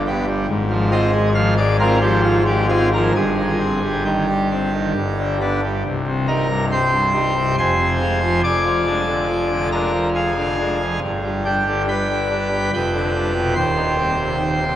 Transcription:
0.00 0.46 G1 medium
0.00 0.46 G2 medium
0.07 0.25 B3 medium
0.07 0.25 G4 medium
0.28 0.46 G3 medium
0.49 3.11 G#1 medium
0.49 3.11 G#2 medium
0.70 0.89 F3 medium
0.91 1.10 C4 medium
0.91 1.10 F4 medium
0.91 1.29 D#5 loud
1.13 1.33 G#3 medium
1.34 1.54 F3 medium
1.34 1.54 F5 loud
1.57 1.77 G#3 medium
1.57 1.76 D5 loud
1.79 1.98 C4 medium
1.79 1.99 F4 medium
1.79 1.98 A#4 loud
2.01 2.41 F3 medium
2.01 2.20 G4 loud
2.24 2.43 F4 loud
2.47 2.67 G#3 medium
2.47 2.66 G4 medium
2.69 2.88 C4 medium
2.69 2.88 F4 medium
2.69 2.88 G#4 loud
2.94 3.12 F3 medium
2.94 3.12 A#4 loud
3.15 4.93 G1 medium
3.15 4.92 G2 medium
3.15 4.03 G#4 loud
3.38 3.58 D#3 medium
3.60 3.79 C4 medium
3.83 4.03 G3 medium
4.05 4.26 D#3 medium
4.05 5.37 G4 medium
4.29 4.49 G3 medium
4.51 4.70 C4 medium
4.74 4.93 D#3 medium
4.95 5.83 G1 medium
4.95 5.83 G2 medium
5.18 5.39 D3 medium
5.40 5.60 B3 medium
5.40 5.60 D4 medium
5.63 5.82 G3 medium
5.85 7.54 C1 medium
5.85 7.54 C2 medium
6.07 6.27 C3 medium
6.28 6.47 G3 soft
6.28 6.47 D#4 medium
6.28 6.65 A#4 medium
6.28 6.65 A#5 medium
6.50 6.70 G2 soft
6.72 6.91 C3 medium
6.72 7.55 C5 medium
6.72 7.56 G5 medium
6.72 7.55 C6 medium
6.94 7.13 G2 medium
7.15 7.33 G3 soft
7.15 7.33 D#4 medium
7.37 7.55 C3 medium
7.58 8.41 F1 medium
7.58 8.41 F2 medium
7.58 8.41 C5 medium
7.58 8.41 G#5 medium
7.58 8.41 C6 loud
7.80 7.98 C3 medium
8.01 8.19 G#3 medium
8.01 8.19 F4 medium
8.23 8.41 F3 medium
8.44 10.98 F1 medium
8.44 10.98 F2 medium
8.44 9.68 D5 medium
8.44 9.69 G#5 medium
8.44 9.68 D6 loud
8.65 8.84 F3 medium
8.86 9.05 G#3 soft
8.86 9.04 D4 medium
9.07 9.26 D3 medium
9.29 9.48 F3 medium
9.50 9.69 D3 soft
9.72 9.90 G#3 soft
9.72 9.90 D4 medium
9.72 10.09 A#4 medium
9.72 10.09 A#5 medium
9.93 10.32 F3 soft
10.15 11.00 G#4 medium
10.15 10.99 F5 medium
10.15 10.99 G#5 medium
10.37 10.56 D3 medium
10.59 10.77 G#3 soft
10.59 10.77 D4 medium
10.82 11.00 F3 soft
11.03 12.69 G1 medium
11.03 12.69 G2 medium
11.24 11.43 G3 medium
11.45 11.63 G3 soft
11.45 11.63 D4 medium
11.45 11.81 G4 medium
11.45 11.82 G5 medium
11.67 11.86 D3 medium
11.88 12.07 G3 medium
11.88 12.71 B4 medium
11.88 12.70 G5 medium
11.88 12.70 B5 medium
12.10 12.29 D3 soft
12.31 12.49 G3 medium
12.31 12.48 D4 medium
12.52 12.70 G3 medium
12.73 13.54 F1 medium
12.73 13.54 F2 medium
12.73 13.54 B4 medium
12.73 13.54 G5 medium
12.73 13.54 B5 loud
12.94 13.12 D3 medium
13.15 13.32 G3 medium
13.15 13.33 D4 medium
13.35 13.53 B2 medium
13.55 14.76 D#1 medium
13.55 14.76 D#2 medium
13.55 14.76 C5 medium
13.55 14.76 G5 medium
13.55 14.76 C6 loud
13.76 13.95 D#3 medium
13.98 14.16 G3 soft
13.98 14.16 C4 medium
14.19 14.38 C3 medium
14.40 14.59 D#3 medium
14.60 14.76 C3 medium

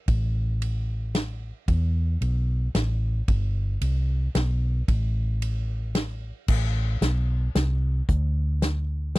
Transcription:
0.08 1.50 A1 medium
0.08 kick loud
0.08 ride medium
0.62 ride medium
1.15 snare medium
1.15 ride medium
1.68 2.16 E2 medium
1.68 kick loud
1.68 ride medium
2.21 2.67 B1 medium
2.21 ride medium
2.75 3.20 A1 medium
2.75 snare medium
2.75 ride medium
3.28 3.76 G1 medium
3.28 kick loud
3.28 ride medium
3.81 4.27 C2 medium
3.81 ride medium
4.35 4.80 B1 loud
4.35 snare medium
4.35 ride medium
4.88 6.31 A1 medium
4.88 kick loud
4.88 ride medium
5.42 ride medium
5.95 snare medium
5.95 ride medium
6.48 6.96 A1 medium
6.48 kick loud
6.48 crash loud
7.01 7.47 B1 medium
7.01 snare medium
7.01 closed hi-hat medium
7.55 8.00 C2 medium
7.55 snare medium
7.55 closed hi-hat medium
8.09 9.19 D2 medium
8.09 kick loud
8.09 closed hi-hat medium
8.62 snare medium
8.62 closed hi-hat medium
9.15 snare medium
9.15 closed hi-hat medium

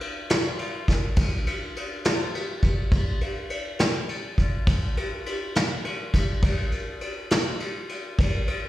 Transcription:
0.01 ride medium
0.30 snare loud
0.30 ride medium
0.59 ride medium
0.88 kick medium
0.88 snare soft
0.88 ride medium
1.16 kick loud
1.16 ride medium
1.46 ride medium
1.76 ride medium
2.05 snare loud
2.05 ride medium
2.35 ride medium
2.63 kick medium
2.63 ride medium
2.92 kick loud
2.92 ride medium
3.21 ride medium
3.50 ride medium
3.79 snare loud
3.79 ride medium
4.09 ride medium
4.38 kick medium
4.38 ride medium
4.67 kick loud
4.67 ride medium
4.97 ride medium
5.26 ride medium
5.55 snare loud
5.55 ride medium
5.85 ride medium
6.14 kick medium
6.14 ride medium
6.42 kick loud
6.42 ride medium
6.72 ride medium
7.01 ride medium
7.30 snare loud
7.30 ride medium
7.60 ride medium
7.89 ride medium
8.19 kick loud
8.19 ride medium
8.47 ride medium

